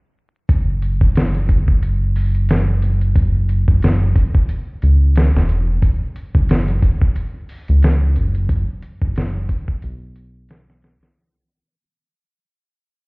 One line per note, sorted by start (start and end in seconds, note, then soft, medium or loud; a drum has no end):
0.49 3.13 F#1 medium
0.49 kick loud
0.49 closed hi-hat medium
0.82 closed hi-hat medium
1.01 kick medium
1.16 snare loud
1.16 closed hi-hat medium
1.35 closed hi-hat soft
1.49 kick medium
1.49 closed hi-hat medium
1.68 kick medium
1.82 closed hi-hat medium
2.16 open hi-hat medium
2.35 closed hi-hat soft
2.49 snare loud
2.49 closed hi-hat medium
2.82 closed hi-hat medium
3.01 closed hi-hat soft
3.16 3.65 F#1 medium
3.16 kick medium
3.16 closed hi-hat medium
3.49 closed hi-hat medium
3.68 4.13 F#1 medium
3.68 kick medium
3.82 snare loud
3.82 closed hi-hat medium
4.16 kick medium
4.16 closed hi-hat medium
4.35 kick medium
4.49 closed hi-hat medium
4.82 5.31 C#2 loud
4.82 closed hi-hat medium
5.16 snare loud
5.16 closed hi-hat medium
5.35 5.80 E1 medium
5.35 snare medium
5.49 closed hi-hat medium
5.82 kick medium
5.82 closed hi-hat medium
6.16 closed hi-hat medium
6.35 6.80 F#1 medium
6.35 kick medium
6.49 snare loud
6.49 closed hi-hat medium
6.68 closed hi-hat soft
6.82 kick medium
6.82 closed hi-hat medium
7.01 kick medium
7.16 closed hi-hat medium
7.49 open hi-hat medium
7.68 8.18 C#2 loud
7.68 closed hi-hat soft
7.82 snare loud
7.82 closed hi-hat medium
8.16 8.65 F#1 medium
8.16 closed hi-hat medium
8.35 closed hi-hat soft
8.49 kick loud
8.49 closed hi-hat medium
8.82 closed hi-hat medium
9.02 9.47 F#1 medium
9.02 kick loud
9.16 snare loud
9.16 closed hi-hat medium
9.49 kick medium
9.49 closed hi-hat medium
9.68 kick medium
9.82 10.98 B1 medium
9.82 closed hi-hat medium
10.16 closed hi-hat medium
10.49 snare loud
10.49 closed hi-hat medium
10.70 snare medium
10.82 snare medium
10.82 closed hi-hat medium
11.01 snare loud
11.01 closed hi-hat medium